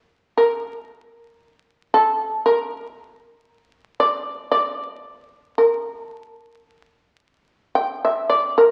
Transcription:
Already playing: A#4
0.37 A#4
1.94 A4
2.46 A#4
4.00 D5
4.51 D5
5.21 A#4
5.58 A#4
6.03 A4
7.75 G5
8.05 E5
8.30 D5
8.58 A#4

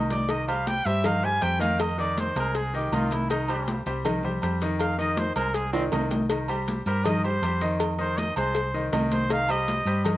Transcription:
Already playing: C2 D#3 D#4 D#5
0.10 D5, cowbell, high conga, low agogo
0.29 D#3 D#4 D#5, cowbell, high conga, low agogo, maracas
0.48 G3 G4 C5 F5, high conga, low agogo, maracas
0.67 G5, cowbell, high conga, maracas
0.85 G2 G3 G4 C5 E5, low agogo, maracas
1.04 D#3 D#4 D#5 F5, cowbell, high conga, low conga, low agogo, maracas
1.23 G3 G4 C5 G#5, high conga, maracas
1.41 F2 G3 G4 C5 G5, cowbell, high conga, low agogo, maracas
1.59 D#3 D#4 D#5 F5, cowbell, high conga, maracas
1.79 D#5, cowbell, high conga, low agogo, maracas
1.98 D#3 D#4 D5 D#5, high conga, maracas
2.17 C5, cowbell, high conga, low agogo, maracas
2.36 C2 G#3 G#4 A#4 C5, cowbell, high conga, low agogo, maracas
2.54 G#4, cowbell, high conga, maracas
2.73 D#3 D#4 G4 D#5, high conga, maracas
2.92 C2 D#3 D#4 F4 D#5, cowbell, high conga, low agogo, maracas
3.11 E4, cowbell, high conga, low agogo, maracas
3.30 D#3 D#4 D#5, cowbell, high conga, low agogo, maracas
3.48 G3 G4 C5, high conga, low agogo, maracas
3.68 cowbell, high conga, maracas
3.86 C2 G3 G4 C5, high conga, low agogo, maracas
4.05 D#3 D#4 D#5, cowbell, high conga, low conga, low agogo, maracas
4.23 G3 G4 C5, high conga, low conga, maracas
4.42 F2 G3 G4 C5, cowbell, high conga, low agogo, maracas
4.61 D#3 D#4 D#5, cowbell, maracas
4.79 F5, cowbell, high conga, low agogo, maracas
4.98 D#3 D#4 D#5, high conga, maracas
5.17 C5, cowbell, high conga, low agogo, maracas
5.36 C2 G#3 G#4 A#4 C5, cowbell, high conga, low agogo, maracas
5.54 G#4, cowbell, high conga, maracas
5.73 D#3 C4 D#4 D#5, high conga, high timbale, maracas
5.92 C2 D#3 D#4 D#5, cowbell, high conga, low timbale, low agogo, maracas
6.11 cowbell, high conga, low timbale, low agogo, maracas
6.30 D#3 D#4 D#5, cowbell, high conga, low agogo, maracas
6.48 G3 G4 C5, high conga, low agogo, maracas
6.68 cowbell, high conga, maracas
6.86 G2 G3 G4 A#4 C5, high conga, low agogo, maracas
7.05 D#3 D#4 D#5, cowbell, high conga, low conga, low agogo, maracas
7.24 G3 G4 C5, high conga, maracas
7.42 F2 G3 G4 C5, cowbell, high conga, low agogo, maracas
7.61 D#3 D#4 D#5, cowbell, maracas
7.80 cowbell, high conga, low agogo, maracas
7.98 D#3 D#4 C5 D#5, high conga, maracas
8.18 D#5, cowbell, high conga, low agogo, maracas
8.36 C2 G#3 G#4 C5, cowbell, high conga, low agogo, maracas
8.55 cowbell, high conga, maracas
8.74 D#3 D#4 D#5, high conga, maracas
8.92 C2 D#3 D#4 D#5, cowbell, high conga, low timbale, low agogo, maracas
9.11 C5, cowbell, high conga, low agogo, maracas
9.29 D#3 D#4 D#5 F5, cowbell, high conga, low agogo, maracas
9.48 G3 G4 C5 D#5, high conga, low agogo, maracas
9.68 cowbell, high conga, maracas
9.85 G2 G3 G4 C5, high conga, low agogo, maracas
10.05 D#3 D#4 D#5, cowbell, high conga, low conga, low agogo, maracas

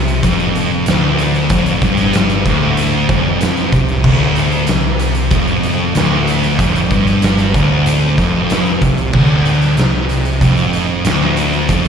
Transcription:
Already playing: C2 C3
0.08 closed hi-hat
0.23 F1 F2, kick, closed hi-hat
0.40 closed hi-hat
0.55 closed hi-hat
0.86 D1 D2, snare, closed hi-hat
1.18 closed hi-hat
1.34 snare, closed hi-hat
1.50 F1 F2, kick, closed hi-hat
1.66 closed hi-hat
1.82 G1 G2, kick, closed hi-hat
1.97 snare, closed hi-hat
2.13 snare, closed hi-hat
2.29 closed hi-hat
2.46 D1 D2, kick, closed hi-hat
2.77 closed hi-hat
3.09 F1 F2, kick, closed hi-hat
3.41 snare, closed hi-hat
3.57 closed hi-hat
3.73 C2 C3, kick, snare, closed hi-hat
3.88 snare, closed hi-hat
4.04 D1 D2, kick, crash
4.36 closed hi-hat
4.52 closed hi-hat
4.67 C2 C3, snare, closed hi-hat
4.99 closed hi-hat
5.15 closed hi-hat
5.31 F1 F2, kick, closed hi-hat
5.48 closed hi-hat
5.63 closed hi-hat
5.95 D1 D2, snare, closed hi-hat
6.27 closed hi-hat
6.43 snare, closed hi-hat
6.59 F1 F2, kick, closed hi-hat
6.76 closed hi-hat
6.90 G1 G2, kick, closed hi-hat
7.07 snare, closed hi-hat
7.22 snare, closed hi-hat
7.38 closed hi-hat
7.54 D1 D2, kick, closed hi-hat
7.86 closed hi-hat
8.18 F1 F2, kick, closed hi-hat
8.50 snare, closed hi-hat
8.65 closed hi-hat
8.81 C2 C3, kick, closed hi-hat
8.98 closed hi-hat
9.13 D1 D2, kick, crash
9.45 closed hi-hat
9.62 snare, closed hi-hat
9.77 C2 C3, snare, closed hi-hat
10.09 closed hi-hat
10.25 closed hi-hat
10.41 F1 F2, kick, closed hi-hat
10.57 closed hi-hat
10.73 closed hi-hat
11.05 D1 D2, snare, closed hi-hat
11.37 closed hi-hat
11.53 closed hi-hat
11.69 F1 F2, kick, closed hi-hat
11.85 closed hi-hat

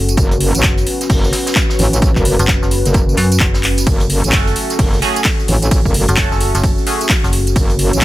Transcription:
Already playing: F#1 C#4 F#4 A4
0.09 closed hi-hat, tambourine
0.17 F#1 B4, kick, closed hi-hat, tambourine, shaker
0.31 closed hi-hat, tambourine
0.40 open hi-hat, shaker
0.55 A1, closed hi-hat, tambourine
0.63 F#1, kick, snare, clap, closed hi-hat, shaker
0.77 closed hi-hat, tambourine
0.86 open hi-hat, shaker
1.01 snare, closed hi-hat, tambourine
1.09 F#1, kick, closed hi-hat, open hi-hat, tambourine
1.24 tambourine
1.33 snare, open hi-hat, shaker
1.46 snare, closed hi-hat, tambourine, shaker
1.55 kick, snare, clap, closed hi-hat, tambourine, shaker
1.70 snare, tambourine, shaker
1.79 A1, open hi-hat, shaker
1.93 closed hi-hat, tambourine
2.02 kick, closed hi-hat, tambourine, shaker
2.16 F#1, kick, clap, tambourine
2.25 open hi-hat, shaker
2.39 F#1, closed hi-hat, tambourine
2.48 kick, snare, clap, closed hi-hat, tambourine, shaker
2.62 F#1, snare, tambourine
2.71 open hi-hat, shaker
2.85 F#1, snare, closed hi-hat, tambourine
2.94 kick, closed hi-hat, tambourine, shaker
3.09 tambourine
3.17 F#2, snare, open hi-hat, shaker
3.32 closed hi-hat, tambourine
3.40 F#1, kick, clap, closed hi-hat, shaker
3.54 snare, tambourine, shaker
3.64 clap, open hi-hat
3.78 closed hi-hat, tambourine, shaker
3.86 F#1 A4, kick, closed hi-hat, ride, shaker
4.00 closed hi-hat, tambourine
4.10 open hi-hat, shaker
4.24 A1, closed hi-hat, tambourine
4.32 F#1 A3 C#4 F#4 A4, kick, snare, clap, closed hi-hat, ride, shaker
4.47 closed hi-hat, tambourine
4.56 open hi-hat, shaker
4.70 snare, closed hi-hat, tambourine
4.79 F#1, kick, closed hi-hat, open hi-hat, ride, tambourine
4.94 tambourine
5.02 A3 C#4 F#4 G#4, snare, open hi-hat, shaker
5.16 closed hi-hat, tambourine
5.25 kick, snare, clap, closed hi-hat, ride, tambourine, shaker
5.40 tambourine
5.48 A1, open hi-hat, shaker
5.62 closed hi-hat, tambourine
5.71 kick, closed hi-hat, ride, tambourine, shaker
5.85 F#1, kick, tambourine
5.94 open hi-hat, shaker
6.08 F#1, closed hi-hat, tambourine
6.17 A3 C#4 F#4 A4, kick, snare, clap, closed hi-hat, ride, tambourine, shaker
6.32 F#1, snare, tambourine
6.40 open hi-hat, shaker
6.54 F#1, snare, closed hi-hat, tambourine
6.64 kick, closed hi-hat, ride, tambourine, shaker
6.78 tambourine
6.87 A3 C#4 F#4 G#4, open hi-hat, shaker
7.01 closed hi-hat, tambourine
7.09 kick, snare, clap, closed hi-hat, ride, shaker
7.24 F#1, closed hi-hat, tambourine
7.32 open hi-hat, shaker
7.47 closed hi-hat, tambourine
7.56 F#1 C#5, kick, closed hi-hat, ride, tambourine, shaker
7.69 closed hi-hat, tambourine
7.79 open hi-hat, shaker
7.93 A1, closed hi-hat, tambourine
8.01 clap, shaker

